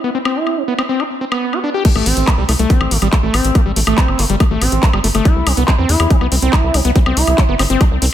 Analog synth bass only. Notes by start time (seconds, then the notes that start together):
1.96 A1
2.06 A1
2.17 A1
2.38 C2
2.49 C2
2.59 C2
2.81 A1
2.91 A1
3.02 A1
3.23 A1
3.34 A1
3.44 A1
3.66 A1
3.76 A1
3.87 A1
4.08 G1
4.19 G1
4.30 G1
4.51 A1
4.61 A1
4.72 A1
4.93 G1
5.04 G1
5.15 G1
5.36 C2
5.47 C2
5.57 C2
5.79 E2
5.89 E2
6.00 E2
6.21 C2
6.32 C2
6.42 C2
6.64 C2
6.74 C2
6.85 C2
7.06 C2
7.17 C2
7.27 C2
7.49 G1
7.59 G1
7.70 G1
7.91 C2
8.02 C2